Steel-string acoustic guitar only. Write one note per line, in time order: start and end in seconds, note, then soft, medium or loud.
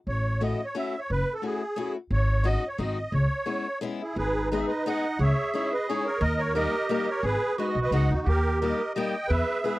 0.41 0.59 A3 soft
0.41 0.59 C#4 soft
0.41 0.60 E4 soft
0.41 0.60 F#4 medium
0.75 0.93 A3 soft
0.75 0.93 C#4 soft
0.75 0.94 E4 soft
0.75 0.94 F#4 medium
1.42 1.61 A3 soft
1.42 1.61 C#4 soft
1.42 1.61 E4 soft
1.42 1.61 F#4 soft
1.76 1.95 A3 medium
1.76 1.95 C#4 soft
1.76 1.95 E4 soft
1.76 1.95 F#4 medium
2.44 2.62 G#3 medium
2.44 2.63 C#4 soft
2.44 2.63 D#4 soft
2.44 2.63 F#4 medium
2.78 2.97 G#3 medium
2.78 2.97 C4 medium
2.78 2.97 D#4 soft
2.78 2.97 F#4 medium
3.46 3.65 G#3 soft
3.46 3.65 B3 soft
3.46 3.66 C#4 soft
3.46 3.66 E4 soft
3.81 4.01 G#3 medium
3.81 4.01 B3 medium
3.81 4.01 C#4 soft
3.81 4.01 E4 medium
4.52 4.70 G#3 soft
4.52 4.70 B3 soft
4.52 4.70 D#4 soft
4.52 4.71 G#4 medium
4.86 5.04 G#3 medium
4.86 5.04 B3 medium
4.86 5.05 D#4 medium
4.86 5.05 G#4 medium
5.54 5.72 G#3 medium
5.54 5.72 C#4 soft
5.54 5.73 D#4 medium
5.54 5.73 E4 soft
5.90 6.07 G#3 medium
5.90 6.07 C#4 soft
5.90 6.07 D#4 soft
5.90 6.07 E4 medium
6.55 6.73 G3 soft
6.55 6.73 A#3 soft
6.55 6.74 D#4 medium
6.55 6.74 G4 medium
6.89 7.07 G3 medium
6.89 7.08 A#3 medium
6.89 7.08 D#4 medium
6.89 7.08 G4 medium
7.58 7.76 G#3 medium
7.58 7.76 B3 soft
7.58 7.76 D#4 soft
7.58 7.77 F#4 medium
7.92 8.11 G#3 medium
7.92 8.11 B3 medium
7.92 8.11 D#4 soft
7.92 8.11 F#4 medium
8.62 8.80 G3 medium
8.62 8.80 A#3 soft
8.62 8.80 D#4 soft
8.62 8.81 G4 medium
8.96 9.14 G3 medium
8.96 9.14 A#3 medium
8.96 9.14 D#4 soft
8.96 9.14 G4 medium
9.64 9.79 G#3 soft
9.64 9.79 B3 soft
9.64 9.79 E4 soft
9.64 9.79 G#4 medium